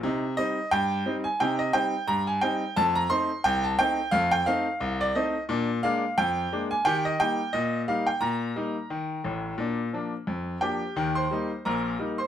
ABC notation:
X:1
M:2/4
L:1/16
Q:"Swing 16ths" 1/4=88
K:Eb
V:1 name="Grand piano"
z2 e2 g3 a | g e g2 b a g2 | =a b c'2 g a g2 | f g f3 d e2 |
z2 f2 g3 a | g e g2 e2 f g | b8- | b6 [Gg]2- |
[Gg] [cc']3 [Bb]3 [cc'] |]
V:2 name="Grand piano"
[C,E]2 [G,CE]2 G,,2 [G,CE]2 | [C,E]2 [G,CE]2 G,,2 [G,CE]2 | [F,,=A,]2 [A,CE]2 C,,2 [A,CE]2 | [F,,=A,]2 [A,CE]2 C,,2 [A,CE]2 |
[B,,D]2 [A,B,D]2 F,,2 [A,B,D]2 | [E,G]2 [G,B,E]2 B,,2 [G,B,E]2 | B,,2 [G,B,E]2 E,2 [=A,,,=A,,]2 | [B,,D]2 [F,B,D]2 F,,2 [F,B,D]2 |
[E,,E,]2 [G,B,E]2 [B,,,B,,]2 [G,B,E]2 |]